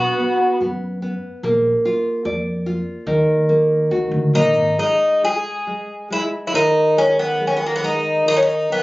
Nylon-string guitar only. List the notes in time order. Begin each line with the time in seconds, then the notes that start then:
Already playing: B3
0.20 B3
0.61 B3
1.02 B3
1.44 A#3
1.85 F4
2.25 D5
2.66 F4
3.07 D#3
3.49 A#3
3.91 F#4
4.34 A#3
4.78 G#3
5.23 G#3
5.67 G#3
6.10 G#3
6.54 D#3
6.97 G#3
7.40 G#3
7.83 G#3
8.26 D#3
8.70 D#3